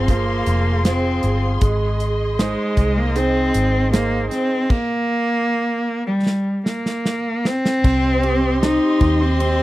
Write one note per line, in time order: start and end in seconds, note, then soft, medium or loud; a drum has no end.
0.00 0.43 G1 medium
0.00 1.58 F3 medium
0.00 0.13 C4 medium
0.00 0.09 F4 soft
0.00 0.09 G#4 soft
0.00 4.67 G#4 medium
0.00 0.09 C5 soft
0.00 1.59 F5 medium
0.00 4.66 C6 medium
0.08 0.87 A#3 medium
0.08 0.83 F4 soft
0.08 0.83 G#4 soft
0.08 0.83 C5 soft
0.08 kick medium
0.08 closed hi-hat medium
0.46 1.20 F1 medium
0.46 closed hi-hat medium
0.85 1.40 C4 medium
0.85 1.60 F4 soft
0.85 1.60 G#4 soft
0.85 1.60 C5 soft
0.85 snare medium
0.85 closed hi-hat medium
1.23 1.60 G1 medium
1.23 closed hi-hat medium
1.61 2.54 G#1 medium
1.61 4.66 G#3 medium
1.61 4.67 D#5 medium
1.61 kick medium
1.61 closed hi-hat medium
2.00 closed hi-hat medium
2.39 2.99 G#3 medium
2.39 3.14 D#4 soft
2.39 3.14 G#4 soft
2.39 3.14 C5 medium
2.39 snare medium
2.39 closed hi-hat medium
2.77 3.50 C2 medium
2.77 kick medium
2.77 closed hi-hat medium
2.98 3.18 A#3 medium
3.16 3.93 C4 medium
3.16 3.91 D#4 soft
3.16 3.91 G#4 soft
3.16 3.91 C5 soft
3.16 closed hi-hat medium
3.54 4.28 G#1 medium
3.54 closed hi-hat medium
3.93 4.29 A#3 loud
3.93 4.68 D#4 soft
3.93 4.68 G#4 soft
3.93 4.68 C5 soft
3.93 snare medium
3.93 closed hi-hat medium
4.31 4.72 C4 medium
4.31 snare soft
4.31 closed hi-hat medium
4.70 6.06 A#3 loud
4.70 kick medium
4.70 crash medium
6.07 6.62 G3 medium
6.26 snare soft
6.66 7.47 A#3 medium
6.66 snare medium
6.86 snare medium
7.06 snare medium
7.45 8.62 C4 loud
7.45 snare medium
7.65 snare medium
7.84 8.78 C2 medium
7.84 8.61 C4 medium
7.84 9.63 G4 medium
7.84 9.63 D#5 medium
7.84 9.63 C6 medium
7.84 kick loud
7.84 crash medium
8.23 9.00 G4 soft
8.23 ride medium
8.63 9.39 C4 medium
8.63 9.23 D#4 medium
8.63 snare medium
8.63 ride medium
9.00 9.63 D#2 medium
9.00 9.63 G4 soft
9.00 kick medium
9.00 ride medium
9.21 9.63 C4 medium
9.40 9.63 C4 medium
9.40 ride medium